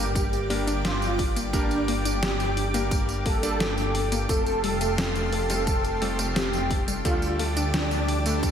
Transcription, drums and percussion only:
0.15 kick loud
0.15 closed hi-hat medium
0.15 tambourine soft
0.33 closed hi-hat soft
0.33 tambourine soft
0.50 open hi-hat medium
0.67 closed hi-hat medium
0.67 tambourine medium
0.85 snare loud
0.85 closed hi-hat medium
0.85 tambourine soft
1.02 closed hi-hat soft
1.02 tambourine soft
1.19 kick loud
1.19 open hi-hat medium
1.36 closed hi-hat medium
1.36 tambourine medium
1.53 kick loud
1.53 closed hi-hat medium
1.53 tambourine soft
1.71 closed hi-hat soft
1.71 tambourine soft
1.88 open hi-hat medium
2.05 closed hi-hat medium
2.05 tambourine medium
2.23 snare loud
2.23 closed hi-hat medium
2.23 tambourine soft
2.40 closed hi-hat soft
2.40 tambourine soft
2.57 open hi-hat medium
2.74 closed hi-hat medium
2.74 tambourine medium
2.91 kick loud
2.91 closed hi-hat medium
2.91 tambourine soft
3.09 closed hi-hat soft
3.09 tambourine soft
3.26 kick loud
3.26 open hi-hat medium
3.43 closed hi-hat medium
3.43 tambourine medium
3.60 snare loud
3.60 closed hi-hat medium
3.60 tambourine soft
3.78 closed hi-hat soft
3.78 tambourine soft
3.95 open hi-hat medium
4.12 closed hi-hat medium
4.12 tambourine medium
4.29 kick loud
4.29 closed hi-hat medium
4.29 tambourine soft
4.46 closed hi-hat soft
4.46 tambourine soft
4.64 open hi-hat medium
4.81 closed hi-hat medium
4.81 tambourine medium
4.98 snare loud
4.98 closed hi-hat medium
4.98 tambourine soft
5.15 closed hi-hat soft
5.15 tambourine soft
5.32 open hi-hat medium
5.50 closed hi-hat medium
5.50 tambourine medium
5.67 kick loud
5.67 closed hi-hat medium
5.67 tambourine soft
5.85 closed hi-hat soft
5.85 tambourine soft
6.02 open hi-hat medium
6.19 closed hi-hat medium
6.19 tambourine medium
6.36 snare loud
6.36 closed hi-hat medium
6.36 tambourine medium
6.53 closed hi-hat soft
6.53 tambourine soft
6.70 kick loud
6.70 open hi-hat medium
6.88 closed hi-hat medium
6.88 tambourine medium
7.05 kick loud
7.05 closed hi-hat medium
7.05 tambourine medium
7.22 closed hi-hat soft
7.22 tambourine soft
7.39 open hi-hat medium
7.57 closed hi-hat medium
7.57 tambourine medium
7.74 snare loud
7.74 closed hi-hat medium
7.74 tambourine medium
7.91 closed hi-hat soft
7.91 tambourine soft
8.08 open hi-hat medium
8.26 closed hi-hat medium
8.26 tambourine medium
8.43 kick loud
8.43 closed hi-hat medium
8.43 tambourine soft

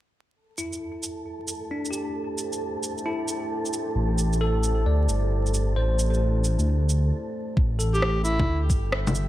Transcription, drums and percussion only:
0.58 shaker soft
0.73 shaker soft
1.03 shaker soft
1.48 shaker medium
1.85 shaker soft
1.93 shaker soft
2.38 shaker soft
2.53 shaker soft
2.83 shaker soft
2.98 shaker soft
3.28 shaker medium
3.65 shaker soft
3.73 shaker medium
4.18 shaker medium
4.33 shaker soft
4.63 shaker medium
5.09 shaker medium
5.46 shaker soft
5.54 shaker medium
5.99 shaker medium
6.14 shaker soft
6.44 shaker soft
6.59 shaker soft
6.89 shaker medium
7.57 kick loud
7.80 shaker medium
7.95 shaker soft
8.02 cross-stick loud
8.25 shaker medium
8.39 kick loud
8.39 low bongo medium
8.70 kick loud
8.70 shaker medium
8.92 cross-stick loud
9.07 low bongo medium
9.07 shaker soft
9.15 shaker medium

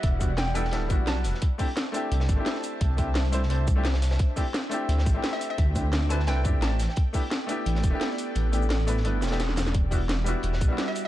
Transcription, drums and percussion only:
0.03 kick loud
0.03 closed hi-hat loud
0.03 closed hi-hat medium
0.21 kick medium
0.21 closed hi-hat medium
0.21 shaker medium
0.37 snare loud
0.37 closed hi-hat loud
0.47 closed hi-hat soft
0.55 closed hi-hat medium
0.55 open hi-hat medium
0.55 shaker medium
0.65 snare soft
0.71 snare loud
0.71 closed hi-hat medium
0.71 closed hi-hat loud
0.90 kick loud
0.90 closed hi-hat medium
0.90 shaker medium
1.07 snare loud
1.07 closed hi-hat medium
1.07 closed hi-hat loud
1.24 snare soft
1.24 closed hi-hat medium
1.24 open hi-hat medium
1.24 shaker medium
1.35 snare soft
1.42 kick loud
1.42 closed hi-hat medium
1.42 closed hi-hat loud
1.59 kick medium
1.59 closed hi-hat medium
1.59 open hi-hat medium
1.59 shaker medium
1.77 snare loud
1.77 closed hi-hat medium
1.77 closed hi-hat loud
1.94 closed hi-hat medium
1.94 open hi-hat medium
1.94 shaker medium
2.12 closed hi-hat medium
2.12 closed hi-hat loud
2.20 snare medium
2.29 kick loud
2.29 closed hi-hat medium
2.29 shaker medium
2.46 snare loud
2.46 closed hi-hat medium
2.55 snare soft
2.64 closed hi-hat medium
2.64 open hi-hat medium
2.64 shaker medium
2.81 kick loud
2.81 closed hi-hat medium
2.98 kick medium
2.98 closed hi-hat medium
2.98 shaker medium
3.15 snare loud
3.15 closed hi-hat loud
3.25 closed hi-hat soft
3.33 closed hi-hat medium
3.33 open hi-hat medium
3.33 shaker medium
3.43 snare soft
3.50 closed hi-hat medium
3.67 kick loud
3.67 closed hi-hat medium
3.67 shaker medium
3.85 snare loud
3.85 snare medium
3.85 closed hi-hat medium
3.85 shaker soft
3.94 snare loud
3.94 closed hi-hat medium
4.02 snare loud
4.02 closed hi-hat medium
4.02 open hi-hat medium
4.02 shaker medium
4.11 snare loud
4.11 closed hi-hat medium
4.19 kick loud
4.19 closed hi-hat medium
4.36 kick medium
4.36 closed hi-hat medium
4.36 open hi-hat medium
4.36 shaker medium
4.54 snare loud
4.54 closed hi-hat medium
4.71 closed hi-hat medium
4.71 open hi-hat medium
4.71 shaker medium
4.89 closed hi-hat medium
4.98 snare medium
5.06 kick loud
5.06 closed hi-hat medium
5.06 shaker medium
5.24 snare loud
5.24 closed hi-hat medium
5.33 snare soft
5.41 closed hi-hat medium
5.41 open hi-hat medium
5.41 shaker medium
5.58 kick loud
5.58 closed hi-hat medium
5.75 kick medium
5.75 closed hi-hat medium
5.75 shaker medium
5.92 snare loud
5.92 closed hi-hat medium
6.02 closed hi-hat soft
6.10 closed hi-hat medium
6.10 open hi-hat medium
6.10 shaker medium
6.19 snare soft
6.27 snare loud
6.27 closed hi-hat medium
6.45 kick loud
6.45 closed hi-hat medium
6.45 shaker medium
6.62 snare loud
6.62 closed hi-hat medium
6.80 snare soft
6.80 closed hi-hat medium
6.80 open hi-hat medium
6.80 shaker medium
6.89 snare soft
6.96 kick loud
6.96 closed hi-hat medium
7.14 kick medium
7.14 closed hi-hat medium
7.14 open hi-hat medium
7.14 shaker medium
7.31 snare loud
7.31 closed hi-hat medium
7.31 closed hi-hat loud
7.49 closed hi-hat medium
7.49 open hi-hat medium
7.49 shaker medium
7.66 closed hi-hat loud
7.75 snare medium
7.83 kick loud
7.83 closed hi-hat medium
7.83 shaker medium
8.01 snare loud
8.01 closed hi-hat medium
8.10 snare soft
8.18 closed hi-hat medium
8.18 open hi-hat medium
8.18 shaker medium
8.35 closed hi-hat medium
8.35 closed hi-hat loud
8.53 closed hi-hat medium
8.53 shaker medium
8.62 shaker soft
8.70 snare loud
8.70 closed hi-hat medium
8.70 closed hi-hat loud
8.80 closed hi-hat soft
8.88 closed hi-hat medium
8.88 open hi-hat medium
8.88 shaker medium
8.97 snare soft
9.05 closed hi-hat loud
9.05 closed hi-hat medium
9.22 snare medium
9.22 closed hi-hat medium
9.22 shaker medium
9.27 snare loud
9.27 closed hi-hat medium
9.32 snare loud
9.32 closed hi-hat medium
9.40 snare medium
9.40 snare loud
9.40 closed hi-hat medium
9.40 shaker soft
9.49 snare medium
9.57 snare loud
9.57 closed hi-hat medium
9.57 open hi-hat medium
9.57 shaker medium
9.66 snare medium
9.66 closed hi-hat soft
9.66 shaker soft
9.74 kick loud
9.74 closed hi-hat medium
9.74 closed hi-hat loud
9.91 kick medium
9.91 closed hi-hat medium
9.91 open hi-hat medium
9.91 shaker medium
10.09 snare loud
10.09 closed hi-hat medium
10.09 closed hi-hat loud
10.27 closed hi-hat medium
10.27 open hi-hat medium
10.27 shaker medium
10.43 closed hi-hat medium
10.43 closed hi-hat loud
10.53 snare medium
10.61 kick loud
10.61 closed hi-hat medium
10.61 shaker medium
10.78 snare loud
10.78 closed hi-hat medium
10.88 snare soft
10.96 closed hi-hat medium
10.96 open hi-hat medium
10.96 shaker medium

